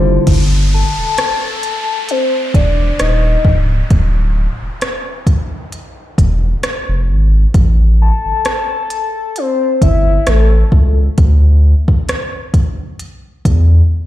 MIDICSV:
0, 0, Header, 1, 8, 480
1, 0, Start_track
1, 0, Key_signature, -1, "minor"
1, 0, Tempo, 909091
1, 143, Time_signature, 4, 2, 24, 8
1, 7427, End_track
2, 0, Start_track
2, 0, Title_t, "Soft synth lead"
2, 0, Program_c, 0, 80
2, 391, Note_on_c, 0, 81, 120
2, 1112, Note_on_c, 0, 72, 96
2, 1120, Note_off_c, 0, 81, 0
2, 1346, Note_off_c, 0, 72, 0
2, 1349, Note_on_c, 0, 74, 88
2, 1589, Note_on_c, 0, 75, 88
2, 1597, Note_off_c, 0, 74, 0
2, 1956, Note_off_c, 0, 75, 0
2, 4233, Note_on_c, 0, 81, 121
2, 4951, Note_on_c, 0, 72, 104
2, 4959, Note_off_c, 0, 81, 0
2, 5187, Note_off_c, 0, 72, 0
2, 5191, Note_on_c, 0, 76, 91
2, 5430, Note_on_c, 0, 69, 85
2, 5438, Note_off_c, 0, 76, 0
2, 5796, Note_off_c, 0, 69, 0
2, 7427, End_track
3, 0, Start_track
3, 0, Title_t, "FM electric piano"
3, 0, Program_c, 1, 5
3, 0, Control_c, 1, 64, 127
3, 0, Note_on_c, 1, 55, 82
3, 0, Note_on_c, 1, 64, 71
3, 0, Note_on_c, 1, 65, 78
3, 0, Note_on_c, 1, 72, 96
3, 140, Note_off_c, 1, 55, 0
3, 144, Note_off_c, 1, 64, 0
3, 147, Note_off_c, 1, 65, 0
3, 150, Note_off_c, 1, 72, 0
3, 150, Control_c, 1, 64, 0
3, 7427, End_track
4, 0, Start_track
4, 0, Title_t, "Analog synth pad"
4, 0, Program_c, 2, 89
4, 0, Note_on_c, 2, 48, 78
4, 0, Note_on_c, 2, 55, 75
4, 0, Note_on_c, 2, 57, 76
4, 0, Note_on_c, 2, 67, 90
4, 121, Note_off_c, 2, 67, 0
4, 123, Note_off_c, 2, 57, 0
4, 137, Note_off_c, 2, 48, 0
4, 137, Note_off_c, 2, 55, 0
4, 7427, End_track
5, 0, Start_track
5, 0, Title_t, "Clean electric guitar"
5, 0, Program_c, 3, 27
5, 0, Note_on_c, 3, 50, 84
5, 0, Note_on_c, 3, 60, 68
5, 459, Note_off_c, 3, 50, 0
5, 459, Note_off_c, 3, 60, 0
5, 7427, End_track
6, 0, Start_track
6, 0, Title_t, "Sub bass"
6, 0, Program_c, 4, 38
6, 0, Note_on_c, 4, 30, 98
6, 98, Note_off_c, 4, 30, 0
6, 144, Note_on_c, 4, 31, 104
6, 442, Note_off_c, 4, 31, 0
6, 515, Note_on_c, 4, 28, 46
6, 559, Note_off_c, 4, 28, 0
6, 1344, Note_on_c, 4, 28, 82
6, 1538, Note_off_c, 4, 28, 0
6, 1586, Note_on_c, 4, 27, 100
6, 1779, Note_off_c, 4, 27, 0
6, 1821, Note_on_c, 4, 25, 91
6, 2016, Note_off_c, 4, 25, 0
6, 2064, Note_on_c, 4, 26, 106
6, 2362, Note_off_c, 4, 26, 0
6, 2436, Note_on_c, 4, 28, 44
6, 2479, Note_off_c, 4, 28, 0
6, 3265, Note_on_c, 4, 28, 87
6, 3458, Note_off_c, 4, 28, 0
6, 3635, Note_on_c, 4, 29, 88
6, 3746, Note_on_c, 4, 32, 95
6, 3753, Note_off_c, 4, 29, 0
6, 3939, Note_off_c, 4, 32, 0
6, 3985, Note_on_c, 4, 33, 102
6, 4283, Note_off_c, 4, 33, 0
6, 4356, Note_on_c, 4, 31, 46
6, 4399, Note_off_c, 4, 31, 0
6, 5184, Note_on_c, 4, 31, 83
6, 5378, Note_off_c, 4, 31, 0
6, 5426, Note_on_c, 4, 33, 96
6, 5619, Note_off_c, 4, 33, 0
6, 5661, Note_on_c, 4, 37, 96
6, 5856, Note_off_c, 4, 37, 0
6, 5904, Note_on_c, 4, 38, 103
6, 6202, Note_off_c, 4, 38, 0
6, 6274, Note_on_c, 4, 40, 47
6, 6318, Note_off_c, 4, 40, 0
6, 7104, Note_on_c, 4, 40, 84
6, 7297, Note_off_c, 4, 40, 0
6, 7427, End_track
7, 0, Start_track
7, 0, Title_t, "Downlifter"
7, 0, Program_c, 5, 103
7, 142, Note_on_c, 5, 60, 83
7, 3983, Note_off_c, 5, 60, 0
7, 7427, End_track
8, 0, Start_track
8, 0, Title_t, "Drums"
8, 142, Note_on_c, 9, 42, 66
8, 142, Note_on_c, 9, 49, 84
8, 143, Note_on_c, 9, 36, 99
8, 195, Note_off_c, 9, 36, 0
8, 195, Note_off_c, 9, 42, 0
8, 195, Note_off_c, 9, 49, 0
8, 622, Note_on_c, 9, 42, 61
8, 625, Note_on_c, 9, 37, 106
8, 675, Note_off_c, 9, 42, 0
8, 678, Note_off_c, 9, 37, 0
8, 861, Note_on_c, 9, 42, 63
8, 914, Note_off_c, 9, 42, 0
8, 1102, Note_on_c, 9, 42, 54
8, 1154, Note_off_c, 9, 42, 0
8, 1343, Note_on_c, 9, 36, 93
8, 1344, Note_on_c, 9, 42, 71
8, 1396, Note_off_c, 9, 36, 0
8, 1397, Note_off_c, 9, 42, 0
8, 1581, Note_on_c, 9, 42, 77
8, 1582, Note_on_c, 9, 37, 108
8, 1634, Note_off_c, 9, 42, 0
8, 1635, Note_off_c, 9, 37, 0
8, 1820, Note_on_c, 9, 36, 86
8, 1873, Note_off_c, 9, 36, 0
8, 2062, Note_on_c, 9, 36, 97
8, 2062, Note_on_c, 9, 42, 62
8, 2114, Note_off_c, 9, 42, 0
8, 2115, Note_off_c, 9, 36, 0
8, 2542, Note_on_c, 9, 42, 59
8, 2546, Note_on_c, 9, 37, 102
8, 2595, Note_off_c, 9, 42, 0
8, 2598, Note_off_c, 9, 37, 0
8, 2780, Note_on_c, 9, 36, 89
8, 2781, Note_on_c, 9, 42, 65
8, 2833, Note_off_c, 9, 36, 0
8, 2834, Note_off_c, 9, 42, 0
8, 3022, Note_on_c, 9, 42, 55
8, 3075, Note_off_c, 9, 42, 0
8, 3264, Note_on_c, 9, 36, 97
8, 3265, Note_on_c, 9, 42, 70
8, 3316, Note_off_c, 9, 36, 0
8, 3318, Note_off_c, 9, 42, 0
8, 3502, Note_on_c, 9, 42, 76
8, 3503, Note_on_c, 9, 37, 108
8, 3555, Note_off_c, 9, 42, 0
8, 3556, Note_off_c, 9, 37, 0
8, 3983, Note_on_c, 9, 36, 102
8, 3983, Note_on_c, 9, 42, 65
8, 4036, Note_off_c, 9, 36, 0
8, 4036, Note_off_c, 9, 42, 0
8, 4461, Note_on_c, 9, 42, 56
8, 4465, Note_on_c, 9, 37, 106
8, 4514, Note_off_c, 9, 42, 0
8, 4518, Note_off_c, 9, 37, 0
8, 4701, Note_on_c, 9, 42, 64
8, 4754, Note_off_c, 9, 42, 0
8, 4941, Note_on_c, 9, 42, 57
8, 4994, Note_off_c, 9, 42, 0
8, 5183, Note_on_c, 9, 36, 89
8, 5183, Note_on_c, 9, 42, 65
8, 5236, Note_off_c, 9, 36, 0
8, 5236, Note_off_c, 9, 42, 0
8, 5421, Note_on_c, 9, 42, 76
8, 5422, Note_on_c, 9, 37, 113
8, 5473, Note_off_c, 9, 42, 0
8, 5475, Note_off_c, 9, 37, 0
8, 5660, Note_on_c, 9, 36, 88
8, 5713, Note_off_c, 9, 36, 0
8, 5902, Note_on_c, 9, 36, 101
8, 5902, Note_on_c, 9, 42, 63
8, 5954, Note_off_c, 9, 42, 0
8, 5955, Note_off_c, 9, 36, 0
8, 6273, Note_on_c, 9, 36, 92
8, 6326, Note_off_c, 9, 36, 0
8, 6382, Note_on_c, 9, 42, 59
8, 6385, Note_on_c, 9, 37, 101
8, 6434, Note_off_c, 9, 42, 0
8, 6438, Note_off_c, 9, 37, 0
8, 6620, Note_on_c, 9, 36, 84
8, 6620, Note_on_c, 9, 42, 61
8, 6672, Note_off_c, 9, 36, 0
8, 6673, Note_off_c, 9, 42, 0
8, 6861, Note_on_c, 9, 42, 55
8, 6914, Note_off_c, 9, 42, 0
8, 7102, Note_on_c, 9, 36, 92
8, 7103, Note_on_c, 9, 42, 66
8, 7155, Note_off_c, 9, 36, 0
8, 7156, Note_off_c, 9, 42, 0
8, 7427, End_track
0, 0, End_of_file